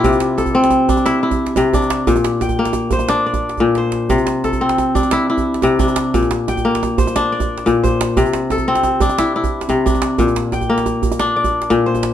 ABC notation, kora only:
X:1
M:12/8
L:1/16
Q:3/8=118
K:Cmix
V:1 name="Kora"
E z3 A6 D4 E6 D4- | D2 z2 g6 c4 d6 c4- | c2 z2 A6 D4 E6 D4- | D2 z2 g6 c4 d6 c4- |
c2 z2 A6 D4 E6 D4- | D2 z2 g6 z4 d6 c4 |]
V:2 name="Kora" clef=bass
C,4 z2 C4 z2 E4 z2 C,4 z2 | B,,4 z2 B,4 z2 D4 z2 B,,4 z2 | C,4 z2 C4 z2 E4 z2 C,4 z2 | B,,4 z2 B,4 z2 D4 z2 B,,4 z2 |
C,4 z2 C4 z2 E4 z2 C,4 z2 | B,,4 z2 B,4 z2 D4 z2 B,,4 z2 |]